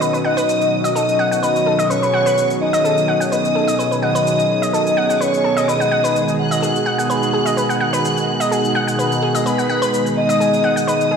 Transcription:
0.00 11.17 B2 medium
0.00 11.17 D#3 medium
0.00 5.64 F#3 medium
0.00 5.64 C#4 medium
0.00 1.86 F#4 medium
0.00 0.12 B4 medium
0.00 0.16 D#5 medium
0.00 0.16 D#6 medium
0.00 shaker soft
0.13 0.18 B4 medium
0.13 shaker soft
0.25 0.86 D#5 medium
0.25 0.33 F#5 medium
0.25 0.87 D#6 medium
0.37 0.48 B4 loud
0.37 shaker medium
0.49 shaker medium
0.61 shaker soft
0.84 0.92 D#5 medium
0.84 shaker medium
0.95 1.07 A4 medium
0.95 1.38 D#5 medium
0.95 1.38 D#6 medium
0.95 shaker soft
1.09 shaker soft
1.19 1.28 F#5 loud
1.31 1.42 F#5 medium
1.31 shaker medium
1.43 1.48 B4 medium
1.43 1.86 D#5 medium
1.43 1.86 D#6 medium
1.43 shaker soft
1.56 shaker soft
1.66 1.78 A4 medium
1.79 1.86 D#5 medium
1.79 shaker medium
1.90 11.17 G#4 medium
1.90 2.01 B4 medium
1.90 2.52 C#5 loud
1.90 2.52 C#6 medium
1.90 shaker soft
2.02 2.07 B4 medium
2.02 shaker soft
2.14 2.22 F#5 medium
2.26 2.37 B4 loud
2.26 shaker medium
2.38 shaker soft
2.50 shaker soft
2.61 3.23 D#5 medium
2.61 3.23 D#6 medium
2.73 2.81 D#5 loud
2.73 shaker medium
2.84 2.96 A4 medium
2.84 shaker soft
2.98 shaker soft
3.08 3.17 F#5 medium
3.20 3.31 F#5 medium
3.20 shaker medium
3.32 3.37 B4 medium
3.32 3.94 D#5 medium
3.32 3.94 D#6 medium
3.32 shaker soft
3.45 shaker soft
3.55 3.67 A4 medium
3.68 3.75 D#5 medium
3.68 shaker medium
3.79 3.90 B4 medium
3.79 shaker soft
3.91 3.96 B4 medium
3.91 shaker soft
4.03 4.64 D#5 medium
4.03 4.11 F#5 medium
4.03 4.64 D#6 medium
4.15 4.26 B4 loud
4.15 shaker medium
4.27 shaker medium
4.39 shaker soft
4.62 4.70 D#5 medium
4.62 shaker medium
4.73 4.85 A4 medium
4.73 5.22 D#5 medium
4.73 5.21 D#6 medium
4.73 shaker soft
4.87 shaker soft
4.97 5.06 F#5 medium
5.09 5.20 F#5 medium
5.09 shaker medium
5.21 5.26 B4 medium
5.21 5.69 C#5 medium
5.21 5.68 C#6 medium
5.21 shaker soft
5.34 shaker soft
5.44 5.56 A4 medium
5.57 5.64 D#5 loud
5.57 shaker medium
5.68 11.17 G#3 medium
5.68 11.17 D#4 medium
5.68 5.80 B4 medium
5.68 6.30 D#5 loud
5.68 6.30 D#6 loud
5.68 shaker medium
5.80 5.85 F#5 medium
5.80 shaker soft
5.92 6.00 F#5 medium
6.04 6.15 B4 loud
6.04 shaker medium
6.16 shaker medium
6.28 shaker soft
6.39 7.01 F#5 medium
6.39 7.01 F#6 medium
6.51 6.59 D#5 loud
6.51 shaker medium
6.62 6.74 G#4 medium
6.62 shaker medium
6.76 shaker soft
6.86 6.95 F#5 medium
6.98 7.09 F#5 medium
6.98 shaker medium
7.10 7.15 B4 medium
7.10 7.72 F#5 medium
7.10 7.72 F#6 medium
7.10 shaker soft
7.23 shaker soft
7.33 7.45 G#4 medium
7.46 7.53 D#5 loud
7.46 shaker medium
7.57 7.69 B4 medium
7.57 shaker medium
7.69 7.74 F#5 medium
7.69 shaker soft
7.81 7.89 F#5 medium
7.81 8.42 F#5 medium
7.81 8.42 F#6 medium
7.93 8.04 B4 loud
7.93 shaker medium
8.05 shaker medium
8.17 shaker soft
8.40 8.48 D#5 loud
8.40 shaker medium
8.51 8.63 G#4 medium
8.51 8.94 F#5 medium
8.51 8.94 F#6 medium
8.51 shaker medium
8.65 shaker soft
8.75 8.84 F#5 loud
8.87 8.98 F#5 medium
8.87 shaker medium
8.99 9.04 B4 medium
8.99 9.41 F#5 medium
8.99 9.41 F#6 medium
8.99 shaker medium
9.12 shaker soft
9.22 9.34 G#4 medium
9.35 9.42 D#5 medium
9.35 shaker medium
9.46 10.08 B4 loud
9.46 9.58 B4 medium
9.46 10.08 B5 medium
9.46 shaker medium
9.58 9.63 F#5 medium
9.58 shaker soft
9.70 9.78 F#5 loud
9.82 9.93 B4 loud
9.82 shaker medium
9.94 shaker medium
10.06 shaker soft
10.17 10.79 D#5 medium
10.17 10.79 D#6 medium
10.29 10.37 D#5 loud
10.29 shaker medium
10.40 10.52 G#4 medium
10.40 shaker medium
10.54 shaker soft
10.64 10.72 F#5 medium
10.76 10.87 F#5 medium
10.76 shaker medium
10.88 10.93 B4 medium
10.88 11.17 D#5 medium
10.88 11.17 D#6 medium
10.88 shaker medium
11.01 shaker soft
11.11 11.17 G#4 medium

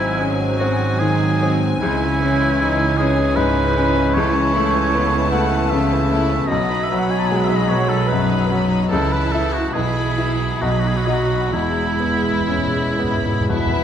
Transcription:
0.00 1.77 G#1 medium
0.00 1.77 G#2 soft
0.00 1.77 G#2 medium
0.00 1.81 F#3 soft
0.00 0.20 C4 soft
0.00 0.44 C4 soft
0.00 0.41 E4 medium
0.00 4.11 G#5 medium
0.20 0.40 G#3 soft
0.20 0.60 C#4 soft
0.39 0.60 C4 soft
0.58 0.80 G#3 soft
0.58 1.26 C4 medium
0.58 1.01 F#4 medium
0.79 1.00 C4 soft
0.99 1.66 D#3 medium
0.99 1.20 G#3 soft
0.99 1.54 G#4 medium
1.19 1.41 C4 soft
1.40 1.61 G#3 medium
1.40 1.82 C4 soft
1.60 1.81 C4 soft
1.81 6.45 C#2 medium
1.81 4.11 C#2 medium
1.81 6.45 C#3 soft
1.81 6.49 E3 medium
1.81 2.00 G#3 medium
1.81 2.99 E4 medium
2.02 2.22 C#4 soft
2.22 2.41 G#3 medium
2.22 2.83 C#4 soft
2.42 2.60 C#4 soft
2.60 2.79 G#3 medium
2.60 2.99 D#4 soft
2.79 2.98 C#4 medium
2.96 3.16 G#3 soft
2.96 3.38 G#4 medium
3.00 3.61 C#4 medium
3.17 3.36 C#4 soft
3.35 3.99 G#2 medium
3.35 3.55 G#3 medium
3.35 4.16 B4 medium
3.54 3.75 C#4 soft
3.75 3.95 G#3 medium
3.75 4.16 C#4 soft
3.96 4.15 C#4 medium
4.14 6.46 C#2 medium
4.14 4.33 A3 medium
4.14 5.31 C#5 medium
4.14 6.45 A5 medium
4.35 4.54 C#4 medium
4.54 5.17 A3 soft
4.54 4.73 E4 soft
4.72 4.92 C#4 medium
4.92 5.11 A3 medium
4.92 5.33 B3 soft
5.12 5.31 C#4 medium
5.31 5.94 A3 medium
5.31 5.50 E4 soft
5.31 5.71 F#5 medium
5.51 5.71 C#4 soft
5.69 6.34 C#3 soft
5.69 5.90 A3 medium
5.69 6.49 E5 medium
5.91 6.10 C#4 soft
6.12 6.50 A3 soft
6.12 6.30 E4 medium
6.31 6.50 C#4 soft
6.48 8.91 B1 medium
6.48 8.87 B1 medium
6.48 8.91 B2 medium
6.48 8.87 F#3 medium
6.48 6.69 B3 medium
6.48 6.85 D#5 medium
6.48 8.87 B5 medium
6.71 6.90 D#4 soft
6.84 7.00 E5 medium
6.89 7.54 F#3 soft
6.89 7.09 B3 soft
6.99 7.12 F#5 medium
7.09 7.29 D#4 soft
7.09 7.21 G#5 medium
7.20 7.29 A5 medium
7.27 7.70 G#3 soft
7.27 7.49 B3 soft
7.27 7.38 G#5 medium
7.36 7.46 F#5 medium
7.45 7.58 E5 medium
7.49 7.69 D#4 soft
7.56 7.70 D#5 medium
7.69 8.34 F#3 soft
7.69 7.89 B3 soft
7.69 7.91 C#5 medium
7.89 8.09 D#4 soft
7.89 8.10 A4 medium
8.08 8.75 F#2 soft
8.08 8.28 B3 medium
8.08 8.49 B4 medium
8.28 8.48 D#4 soft
8.48 8.92 F#3 soft
8.48 8.69 B3 medium
8.69 8.90 D#4 soft
8.90 9.71 C#2 medium
8.90 9.73 C#2 medium
8.90 9.71 C#3 soft
8.90 9.71 E3 medium
8.90 9.70 E4 soft
8.90 9.14 A4 medium
8.90 9.71 A5 medium
9.12 9.33 B4 medium
9.32 9.71 E4 soft
9.32 9.55 A4 medium
9.32 9.71 E5 soft
9.53 9.75 F#4 medium
9.73 10.60 B1 medium
9.73 10.59 B1 soft
9.73 10.60 B2 soft
9.73 10.60 E3 soft
9.73 10.60 E4 soft
9.73 10.63 G#4 medium
9.73 10.62 B5 soft
10.18 10.58 E4 soft
10.18 10.58 E5 soft
10.61 11.51 B1 soft
10.61 11.51 B1 medium
10.61 11.51 B2 soft
10.61 11.52 F#3 soft
10.61 11.53 D#4 soft
10.61 10.72 F#4 soft
10.61 11.52 B5 soft
10.71 10.81 G#4 soft
10.79 10.89 F#4 soft
10.87 10.98 G#4 soft
10.97 11.07 F#4 soft
11.05 11.49 F#4 soft
11.05 11.15 G#4 soft
11.05 11.49 D#5 soft
11.13 11.52 F#4 medium
11.52 13.84 E1 soft
11.52 13.84 E2 soft
11.52 12.39 E2 soft
11.52 11.61 E2 soft
11.52 13.84 G#3 soft
11.52 13.47 E4 medium
11.52 13.50 E4 soft
11.52 13.48 B5 soft
11.62 11.70 E2 soft
11.71 11.78 E2 soft
11.80 11.87 E2 soft
11.89 11.95 E2 soft
11.96 12.04 E2 soft
11.96 12.79 B3 soft
12.05 12.13 E2 soft
12.14 12.21 E2 soft
12.22 12.30 E2 soft
12.31 12.39 E2 soft
12.40 12.48 E2 soft
12.48 12.56 E2 soft
12.48 12.97 E2 soft
12.48 13.00 C#4 soft
12.58 12.65 E2 soft
12.67 12.74 E2 soft
12.75 12.84 E2 soft
12.85 12.93 E2 soft
12.95 13.03 E2 soft
12.99 13.51 G#2 soft
12.99 13.80 B3 soft
13.04 13.12 E2 soft
13.13 13.21 E2 soft
13.23 13.30 E2 soft
13.31 13.39 E2 soft
13.40 13.48 E2 soft
13.49 13.58 E2 soft
13.49 13.84 F#2 soft
13.49 13.84 B2 soft
13.49 13.84 E4 medium
13.49 13.84 B4 medium
13.49 13.84 E5 medium
13.59 13.65 E2 medium
13.66 13.74 E2 medium
13.75 13.83 E2 medium

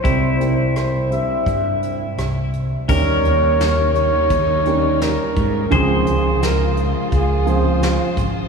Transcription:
0.00 2.85 C3 medium
0.00 0.29 G3 medium
0.00 0.29 C4 medium
0.00 0.15 D#4 medium
0.00 2.50 E4 medium
0.00 0.76 C5 medium
0.04 2.86 C2 medium
0.04 1.19 C2 medium
0.04 0.29 E4 medium
0.04 0.29 C5 medium
0.04 kick medium
0.04 closed hi-hat medium
0.39 0.89 G3 medium
0.39 0.89 C4 medium
0.39 0.89 E4 medium
0.39 0.89 A#4 medium
0.39 closed hi-hat soft
0.76 1.09 C5 medium
0.76 cross-stick medium
0.76 closed hi-hat medium
1.10 2.10 G3 medium
1.10 2.10 C4 medium
1.10 2.09 E4 medium
1.10 2.10 C5 medium
1.10 2.15 E5 medium
1.10 closed hi-hat soft
1.46 2.04 G2 medium
1.46 kick medium
1.46 closed hi-hat medium
1.83 closed hi-hat soft
2.18 2.76 C2 medium
2.18 cross-stick medium
2.18 closed hi-hat medium
2.53 closed hi-hat soft
2.88 5.68 D#2 medium
2.88 3.18 D#2 medium
2.88 8.48 C#3 medium
2.88 5.68 D#3 medium
2.88 3.87 G3 medium
2.88 5.69 G3 medium
2.88 5.69 A#3 medium
2.88 3.87 C#4 medium
2.88 3.87 D#4 medium
2.88 5.69 D#4 medium
2.88 5.81 A#4 medium
2.88 3.87 A#4 medium
2.88 3.92 C#5 loud
2.88 kick medium
2.88 crash medium
3.24 4.10 D#2 medium
3.24 closed hi-hat medium
3.60 snare medium
3.60 closed hi-hat medium
3.95 5.03 C#5 loud
3.95 closed hi-hat soft
4.30 5.16 D#2 medium
4.30 kick medium
4.30 closed hi-hat medium
4.65 5.39 G3 medium
4.65 5.40 C#4 medium
4.65 5.40 D#4 medium
4.65 5.40 A#4 medium
4.65 closed hi-hat soft
5.01 5.73 A#4 medium
5.01 snare medium
5.01 closed hi-hat medium
5.37 5.65 G#2 medium
5.37 kick medium
5.37 closed hi-hat medium
5.70 8.48 C#2 medium
5.70 6.00 C#2 medium
5.70 8.48 C#3 medium
5.70 6.68 F3 medium
5.70 6.68 C4 medium
5.70 6.69 C#4 medium
5.70 6.68 G#4 medium
5.70 6.42 G#4 medium
5.70 8.48 C5 medium
5.70 kick medium
5.70 closed hi-hat medium
5.74 8.48 G#3 medium
5.74 8.48 F4 medium
6.06 6.93 C#2 medium
6.06 closed hi-hat medium
6.42 6.83 A#4 medium
6.42 snare medium
6.42 closed hi-hat medium
6.77 closed hi-hat medium
7.12 7.97 C#2 medium
7.12 7.50 G#4 medium
7.12 kick medium
7.12 closed hi-hat medium
7.46 8.19 F3 medium
7.46 8.20 C4 medium
7.46 8.19 C#4 medium
7.46 8.20 G#4 medium
7.46 8.18 C5 medium
7.46 closed hi-hat medium
7.82 snare medium
7.82 closed hi-hat medium
8.17 8.46 G#1 loud
8.17 kick medium
8.17 closed hi-hat medium

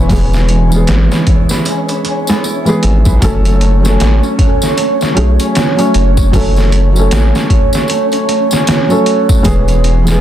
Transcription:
0.00 0.48 G#3 medium
0.00 0.72 B3 medium
0.00 10.21 C#4 medium
0.00 0.88 E4 medium
0.00 1.49 B4 medium
0.00 10.21 C#5 medium
0.00 1.44 E5 medium
0.09 0.85 E1 loud
0.09 0.66 E3 medium
0.09 0.32 E3 medium
0.09 0.66 G#3 medium
0.09 0.67 B3 medium
0.09 0.68 G#4 medium
0.09 kick loud
0.09 open hi-hat medium
0.09 tambourine medium
0.33 3.27 E3 medium
0.33 snare soft
0.33 tambourine soft
0.49 1.65 G#3 medium
0.49 closed hi-hat medium
0.69 2.60 E3 medium
0.69 2.61 G#3 medium
0.69 1.11 B3 medium
0.69 tambourine medium
0.74 2.62 B3 medium
0.74 2.63 G#4 medium
0.87 1.09 G#1 medium
0.87 snare loud
0.87 closed hi-hat medium
0.87 tambourine medium
1.11 2.28 B3 medium
1.11 snare medium
1.11 tambourine soft
1.27 2.44 E4 medium
1.27 kick medium
1.27 closed hi-hat medium
1.49 1.89 B4 medium
1.49 snare soft
1.49 tambourine medium
1.65 2.04 G#3 medium
1.65 closed hi-hat medium
1.65 tambourine medium
1.88 2.67 B4 medium
1.88 closed hi-hat soft
1.88 tambourine soft
2.05 3.27 G#3 medium
2.05 closed hi-hat medium
2.27 5.39 B3 medium
2.27 snare soft
2.27 tambourine medium
2.44 5.05 E4 medium
2.44 tambourine medium
2.65 3.17 E3 medium
2.65 3.17 G#3 medium
2.65 3.18 B3 medium
2.65 3.19 G#4 medium
2.65 3.06 B4 medium
2.65 tambourine soft
2.83 3.04 G#1 medium
2.83 4.55 E5 medium
2.83 closed hi-hat medium
3.05 3.20 B1 medium
3.05 5.11 B4 medium
3.05 kick loud
3.05 tambourine medium
3.21 3.97 F#1 loud
3.21 3.78 F#3 medium
3.21 3.44 F#3 medium
3.21 3.78 A3 medium
3.21 3.79 C#4 medium
3.21 3.79 A4 loud
3.21 kick loud
3.21 closed hi-hat medium
3.21 tambourine medium
3.45 6.32 F#3 medium
3.45 closed hi-hat soft
3.45 tambourine soft
3.61 4.77 A3 medium
3.61 closed hi-hat medium
3.81 5.11 F#3 medium
3.81 5.12 A3 medium
3.81 4.23 C#4 loud
3.85 5.13 C#4 medium
3.85 5.14 A4 medium
3.85 snare soft
3.85 tambourine medium
4.00 4.21 A1 medium
4.00 4.39 F#4 medium
4.00 snare loud
4.00 closed hi-hat medium
4.00 tambourine medium
4.23 5.39 C#4 medium
4.23 tambourine soft
4.39 5.55 F#4 medium
4.39 kick medium
4.39 closed hi-hat medium
4.62 5.00 C#5 medium
4.62 snare soft
4.62 tambourine medium
4.77 5.16 A3 medium
4.77 closed hi-hat medium
4.77 tambourine medium
5.01 5.78 C#5 medium
5.01 snare soft
5.01 tambourine soft
5.14 5.37 B1 medium
5.14 5.72 F#3 medium
5.14 5.72 A3 medium
5.14 6.72 A3 medium
5.14 5.73 C#4 medium
5.14 5.74 G#4 medium
5.14 closed hi-hat medium
5.40 6.95 C#4 medium
5.40 closed hi-hat soft
5.40 tambourine medium
5.55 7.11 F#4 medium
5.55 snare loud
5.55 closed hi-hat medium
5.55 tambourine medium
5.76 6.28 F#3 medium
5.76 6.29 A3 medium
5.76 6.29 C#4 medium
5.76 6.17 C#5 loud
5.76 6.30 C#5 loud
5.76 closed hi-hat soft
5.76 tambourine soft
5.94 6.30 F#1 medium
5.94 7.55 F#5 medium
5.94 closed hi-hat medium
6.17 7.73 C#5 medium
6.17 kick medium
6.17 tambourine medium
6.32 7.08 F#1 medium
6.32 6.89 F#3 medium
6.32 6.56 F#3 medium
6.32 6.90 A3 medium
6.32 6.90 C#4 medium
6.32 6.91 A4 medium
6.32 kick loud
6.32 open hi-hat medium
6.32 tambourine medium
6.57 9.50 F#3 medium
6.57 snare soft
6.57 tambourine soft
6.72 7.89 A3 medium
6.72 closed hi-hat medium
6.92 8.83 F#3 medium
6.92 8.84 A3 medium
6.92 7.34 C#4 medium
6.92 tambourine medium
6.97 8.85 C#4 medium
6.97 8.87 A4 medium
7.11 7.32 A1 medium
7.11 7.50 F#4 medium
7.11 snare loud
7.11 closed hi-hat medium
7.11 tambourine medium
7.34 8.51 C#4 medium
7.34 snare soft
7.34 tambourine soft
7.50 8.67 F#4 medium
7.50 kick medium
7.50 closed hi-hat medium
7.73 8.12 C#5 medium
7.73 snare soft
7.73 tambourine medium
7.88 8.28 A3 medium
7.88 closed hi-hat medium
7.88 tambourine medium
8.12 8.90 C#5 medium
8.12 closed hi-hat soft
8.12 tambourine soft
8.28 9.90 A3 medium
8.28 closed hi-hat medium
8.51 10.21 C#4 medium
8.51 snare soft
8.51 tambourine medium
8.67 10.21 F#4 medium
8.67 snare loud
8.67 closed hi-hat medium
8.67 tambourine medium
8.88 9.40 F#3 medium
8.88 9.41 A3 medium
8.88 9.41 C#4 medium
8.88 9.42 A4 medium
8.88 9.29 C#5 loud
8.88 tambourine soft
9.06 10.21 F#5 medium
9.06 closed hi-hat medium
9.29 10.21 C#5 medium
9.29 kick medium
9.29 tambourine medium
9.43 10.20 E1 medium
9.43 10.01 E3 medium
9.43 9.67 E3 medium
9.43 10.01 G#3 medium
9.43 10.02 B3 medium
9.43 10.02 G#4 loud
9.43 kick loud
9.43 closed hi-hat medium
9.43 tambourine medium
9.68 10.21 E3 medium
9.68 closed hi-hat soft
9.68 tambourine soft
9.84 10.21 G#3 medium
9.84 closed hi-hat medium
10.03 10.21 E3 medium
10.03 10.21 G#3 medium
10.03 10.21 B3 loud
10.03 tambourine medium
10.08 10.21 B3 medium
10.08 10.21 G#4 medium
10.08 snare soft

